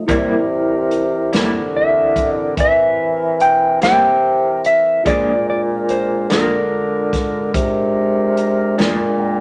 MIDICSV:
0, 0, Header, 1, 7, 480
1, 0, Start_track
1, 0, Tempo, 828729
1, 49, Time_signature, 12, 3, 24, 8
1, 5446, End_track
2, 0, Start_track
2, 0, Title_t, "Clean electric guitar"
2, 0, Program_c, 0, 27
2, 1022, Note_on_c, 0, 76, 80
2, 1376, Note_off_c, 0, 76, 0
2, 1376, Note_on_c, 0, 74, 80
2, 1501, Note_off_c, 0, 74, 0
2, 1508, Note_on_c, 0, 76, 83
2, 1975, Note_off_c, 0, 76, 0
2, 1978, Note_on_c, 0, 79, 82
2, 2212, Note_off_c, 0, 79, 0
2, 2219, Note_on_c, 0, 79, 96
2, 2698, Note_off_c, 0, 79, 0
2, 2700, Note_on_c, 0, 76, 80
2, 2918, Note_off_c, 0, 76, 0
2, 2938, Note_on_c, 0, 74, 81
2, 3177, Note_off_c, 0, 74, 0
2, 3184, Note_on_c, 0, 74, 67
2, 3247, Note_off_c, 0, 74, 0
2, 3420, Note_on_c, 0, 72, 77
2, 3661, Note_off_c, 0, 72, 0
2, 3665, Note_on_c, 0, 70, 65
2, 5072, Note_off_c, 0, 70, 0
2, 5446, End_track
3, 0, Start_track
3, 0, Title_t, "Tine electric piano"
3, 0, Program_c, 1, 4
3, 39, Note_on_c, 1, 64, 51
3, 43, Note_on_c, 1, 67, 47
3, 50, Note_on_c, 1, 70, 50
3, 59, Note_on_c, 1, 74, 58
3, 2901, Note_off_c, 1, 64, 0
3, 2903, Note_off_c, 1, 67, 0
3, 2906, Note_off_c, 1, 70, 0
3, 2911, Note_off_c, 1, 74, 0
3, 2917, Note_on_c, 1, 65, 46
3, 2923, Note_on_c, 1, 68, 39
3, 2931, Note_on_c, 1, 72, 40
3, 2937, Note_on_c, 1, 74, 53
3, 5327, Note_on_c, 1, 79, 50
3, 5446, Note_off_c, 1, 65, 0
3, 5446, Note_off_c, 1, 68, 0
3, 5446, Note_off_c, 1, 72, 0
3, 5446, Note_off_c, 1, 74, 0
3, 5446, Note_off_c, 1, 79, 0
3, 5446, End_track
4, 0, Start_track
4, 0, Title_t, "Tonewheel organ"
4, 0, Program_c, 2, 16
4, 45, Note_on_c, 2, 52, 54
4, 46, Note_on_c, 2, 60, 60
4, 49, Note_on_c, 2, 70, 59
4, 2904, Note_off_c, 2, 52, 0
4, 2904, Note_off_c, 2, 60, 0
4, 2906, Note_off_c, 2, 70, 0
4, 2926, Note_on_c, 2, 56, 60
4, 2927, Note_on_c, 2, 70, 60
4, 2928, Note_on_c, 2, 62, 63
4, 5446, Note_off_c, 2, 56, 0
4, 5446, Note_off_c, 2, 62, 0
4, 5446, Note_off_c, 2, 70, 0
4, 5446, End_track
5, 0, Start_track
5, 0, Title_t, "Clean electric guitar"
5, 0, Program_c, 3, 27
5, 47, Note_on_c, 3, 48, 69
5, 51, Note_on_c, 3, 55, 72
5, 53, Note_on_c, 3, 64, 78
5, 54, Note_on_c, 3, 58, 71
5, 192, Note_off_c, 3, 48, 0
5, 194, Note_off_c, 3, 55, 0
5, 195, Note_off_c, 3, 58, 0
5, 195, Note_off_c, 3, 64, 0
5, 768, Note_on_c, 3, 64, 65
5, 772, Note_on_c, 3, 58, 60
5, 774, Note_on_c, 3, 55, 54
5, 778, Note_on_c, 3, 48, 52
5, 913, Note_off_c, 3, 64, 0
5, 915, Note_off_c, 3, 58, 0
5, 916, Note_off_c, 3, 55, 0
5, 918, Note_off_c, 3, 48, 0
5, 2210, Note_on_c, 3, 64, 58
5, 2214, Note_on_c, 3, 58, 58
5, 2218, Note_on_c, 3, 55, 50
5, 2219, Note_on_c, 3, 48, 52
5, 2354, Note_off_c, 3, 64, 0
5, 2356, Note_off_c, 3, 58, 0
5, 2357, Note_off_c, 3, 55, 0
5, 2358, Note_off_c, 3, 48, 0
5, 2928, Note_on_c, 3, 46, 68
5, 2934, Note_on_c, 3, 53, 68
5, 2934, Note_on_c, 3, 56, 70
5, 2938, Note_on_c, 3, 62, 71
5, 3073, Note_off_c, 3, 46, 0
5, 3075, Note_off_c, 3, 53, 0
5, 3075, Note_off_c, 3, 56, 0
5, 3078, Note_off_c, 3, 62, 0
5, 3649, Note_on_c, 3, 62, 59
5, 3652, Note_on_c, 3, 56, 60
5, 3654, Note_on_c, 3, 53, 57
5, 3657, Note_on_c, 3, 46, 53
5, 3793, Note_off_c, 3, 62, 0
5, 3794, Note_off_c, 3, 56, 0
5, 3795, Note_off_c, 3, 53, 0
5, 3797, Note_off_c, 3, 46, 0
5, 5086, Note_on_c, 3, 62, 66
5, 5090, Note_on_c, 3, 56, 64
5, 5093, Note_on_c, 3, 53, 60
5, 5095, Note_on_c, 3, 46, 61
5, 5230, Note_off_c, 3, 62, 0
5, 5232, Note_off_c, 3, 56, 0
5, 5233, Note_off_c, 3, 53, 0
5, 5235, Note_off_c, 3, 46, 0
5, 5446, End_track
6, 0, Start_track
6, 0, Title_t, "Bassoon"
6, 0, Program_c, 4, 70
6, 48, Note_on_c, 4, 48, 65
6, 747, Note_off_c, 4, 48, 0
6, 771, Note_on_c, 4, 50, 75
6, 1468, Note_off_c, 4, 50, 0
6, 1490, Note_on_c, 4, 52, 69
6, 2188, Note_off_c, 4, 52, 0
6, 2210, Note_on_c, 4, 48, 73
6, 2757, Note_off_c, 4, 48, 0
6, 2928, Note_on_c, 4, 46, 70
6, 3626, Note_off_c, 4, 46, 0
6, 3646, Note_on_c, 4, 50, 75
6, 4345, Note_off_c, 4, 50, 0
6, 4368, Note_on_c, 4, 48, 79
6, 5065, Note_off_c, 4, 48, 0
6, 5082, Note_on_c, 4, 46, 79
6, 5446, Note_off_c, 4, 46, 0
6, 5446, End_track
7, 0, Start_track
7, 0, Title_t, "Drums"
7, 50, Note_on_c, 9, 36, 97
7, 51, Note_on_c, 9, 42, 73
7, 108, Note_off_c, 9, 36, 0
7, 108, Note_off_c, 9, 42, 0
7, 528, Note_on_c, 9, 42, 48
7, 586, Note_off_c, 9, 42, 0
7, 771, Note_on_c, 9, 42, 68
7, 779, Note_on_c, 9, 38, 97
7, 829, Note_off_c, 9, 42, 0
7, 837, Note_off_c, 9, 38, 0
7, 1251, Note_on_c, 9, 36, 70
7, 1253, Note_on_c, 9, 42, 56
7, 1309, Note_off_c, 9, 36, 0
7, 1311, Note_off_c, 9, 42, 0
7, 1490, Note_on_c, 9, 36, 99
7, 1491, Note_on_c, 9, 42, 76
7, 1548, Note_off_c, 9, 36, 0
7, 1549, Note_off_c, 9, 42, 0
7, 1970, Note_on_c, 9, 42, 57
7, 2028, Note_off_c, 9, 42, 0
7, 2211, Note_on_c, 9, 42, 75
7, 2219, Note_on_c, 9, 38, 96
7, 2269, Note_off_c, 9, 42, 0
7, 2277, Note_off_c, 9, 38, 0
7, 2690, Note_on_c, 9, 42, 59
7, 2748, Note_off_c, 9, 42, 0
7, 2930, Note_on_c, 9, 36, 91
7, 2930, Note_on_c, 9, 42, 75
7, 2987, Note_off_c, 9, 36, 0
7, 2988, Note_off_c, 9, 42, 0
7, 3411, Note_on_c, 9, 42, 50
7, 3469, Note_off_c, 9, 42, 0
7, 3650, Note_on_c, 9, 42, 67
7, 3658, Note_on_c, 9, 38, 94
7, 3708, Note_off_c, 9, 42, 0
7, 3716, Note_off_c, 9, 38, 0
7, 4130, Note_on_c, 9, 36, 74
7, 4132, Note_on_c, 9, 42, 55
7, 4140, Note_on_c, 9, 38, 28
7, 4188, Note_off_c, 9, 36, 0
7, 4190, Note_off_c, 9, 42, 0
7, 4198, Note_off_c, 9, 38, 0
7, 4369, Note_on_c, 9, 36, 103
7, 4370, Note_on_c, 9, 42, 69
7, 4427, Note_off_c, 9, 36, 0
7, 4428, Note_off_c, 9, 42, 0
7, 4849, Note_on_c, 9, 42, 53
7, 4906, Note_off_c, 9, 42, 0
7, 5089, Note_on_c, 9, 42, 64
7, 5097, Note_on_c, 9, 38, 92
7, 5147, Note_off_c, 9, 42, 0
7, 5155, Note_off_c, 9, 38, 0
7, 5446, End_track
0, 0, End_of_file